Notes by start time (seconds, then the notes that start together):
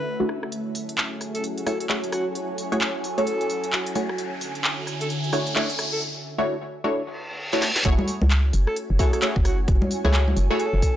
Already playing: D3 A3 C#4 E4 F#4 A4 B4 E5
0.20 A3 C#4 D4 E4 F#4
0.29 cross-stick
0.43 cross-stick
0.52 F#3 C#4 E4 F#4 G#4 A4, closed hi-hat, riser
0.75 G#5, open hi-hat
0.89 closed hi-hat
0.98 C#5, clap
1.21 cross-stick, open hi-hat
1.35 A4, closed hi-hat
1.44 closed hi-hat
1.58 closed hi-hat
1.66 A3 E4 F#4 G#4 A4 C#5, cross-stick, open hi-hat
1.80 A4, closed hi-hat
1.89 A3 E4 F#4 G#4 C#5, clap
2.04 closed hi-hat
2.12 F#4, cross-stick, open hi-hat
2.35 F#4, closed hi-hat
2.58 open hi-hat
2.72 A3 E4 F#4 G#4 C#5, closed hi-hat
2.81 clap
3.04 open hi-hat
3.18 A3 E4 F#4 G#4 A4 C#5, closed hi-hat
3.27 closed hi-hat
3.41 closed hi-hat
3.50 open hi-hat
3.64 closed hi-hat
3.73 clap
3.86 closed hi-hat
3.95 A3 E4 F#4 G#4 C#5, open hi-hat
4.09 cross-stick
4.18 D3 E4, closed hi-hat
4.41 open hi-hat
4.55 closed hi-hat
4.64 A4, clap
4.87 cross-stick, open hi-hat
5.01 A4, closed hi-hat
5.10 closed hi-hat
5.24 closed hi-hat
5.33 A3 D4 E4 F#4 C#5, cross-stick, open hi-hat
5.47 closed hi-hat
5.56 A3 D4 E4 F#4 C#5, clap
5.70 closed hi-hat
5.79 cross-stick, open hi-hat
5.93 A4
6.38 A3 D4 E4 F#4 C#5
6.84 A3 D4 E4 F#4 C#5
6.93 reverse cymbal
7.53 A3 D4 E4 F#4 C#5, snare
7.62 snare
7.76 snare
7.85 F#1 A3 C#4 E4 F#4 G#4 C#5 G#5, kick, closed hi-hat
7.99 high conga
8.08 C#5, open hi-hat
8.22 C#2, high conga
8.31 clap, closed hi-hat
8.53 F#1, open hi-hat
8.67 A4, cross-stick
8.76 closed hi-hat
8.90 F#1 G#5
8.99 A3 E4 F#4 G#4 A4 C#5, kick, open hi-hat
9.13 A4, cross-stick, closed hi-hat
9.22 A3 E4 F#4 G#4 C#5, clap, closed hi-hat
9.36 F#1, kick
9.45 F#4, cross-stick, open hi-hat
9.68 F#1, kick, closed hi-hat
9.82 high conga
9.91 open hi-hat
10.05 C#2 A3 E4 F#4 G#4 C#5, high conga
10.14 clap, closed hi-hat
10.28 high conga
10.37 F#1, open hi-hat
10.50 A3 E4 F#4 G#4 A4 C#5, cross-stick
10.60 closed hi-hat
10.73 F#1
10.82 kick, open hi-hat